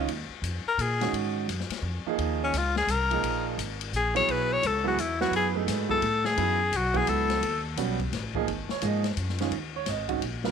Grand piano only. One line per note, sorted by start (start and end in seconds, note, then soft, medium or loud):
1.01 1.46 D#3 medium
1.01 1.46 G#3 medium
1.01 1.46 C#4 medium
1.01 1.46 F#4 medium
2.07 2.51 F3 medium
2.07 2.51 A#3 medium
2.07 2.52 D#4 medium
2.07 2.52 G#4 medium
3.11 3.56 F3 medium
3.11 3.56 A#3 medium
3.11 3.56 D#4 medium
3.11 3.56 G#4 medium
4.15 4.60 F#3 medium
4.15 4.60 B3 medium
4.15 4.60 E4 medium
4.15 4.61 G#4 medium
4.84 4.96 F#3 medium
4.84 4.96 B3 medium
4.84 4.97 E4 medium
4.84 4.97 G#4 medium
5.21 5.66 F#3 medium
5.21 5.66 B3 medium
5.21 5.66 E4 medium
5.21 5.54 B4 medium
5.55 5.88 A3 medium
5.55 5.88 D#4 medium
5.55 5.87 G#4 medium
5.55 5.88 B4 medium
5.89 6.01 F#3 medium
5.89 6.01 B3 medium
5.89 6.01 E4 medium
5.89 6.01 G#4 medium
6.37 6.57 F#3 medium
6.37 6.58 B3 medium
6.37 6.57 E4 medium
6.37 6.58 G#4 medium
6.94 7.39 F#3 medium
6.94 7.40 B3 medium
6.94 7.40 E4 medium
6.94 7.40 F#4 medium
7.77 7.97 G3 medium
7.77 7.97 B3 medium
7.77 7.97 C#4 medium
7.77 7.97 F#4 medium
8.35 8.46 F3 medium
8.35 8.46 A#3 medium
8.35 8.46 D#4 medium
8.35 8.46 G#4 medium
8.71 8.82 C#5 medium
8.82 9.02 F3 medium
8.82 9.02 A#3 medium
8.82 9.02 D#4 medium
8.82 9.02 G#4 medium
8.82 9.05 D#5 medium
9.40 9.51 D#3 medium
9.40 9.51 G#3 medium
9.40 9.51 C#4 medium
9.40 9.52 F4 medium
9.76 9.87 C#5 medium
9.89 10.09 D#5 medium
10.08 10.20 D#3 medium
10.08 10.20 G#3 medium
10.08 10.21 C#4 medium
10.08 10.20 F#4 medium
10.44 10.51 F#3 medium
10.44 10.51 B3 medium
10.44 10.51 F4 medium
10.44 10.51 A#4 medium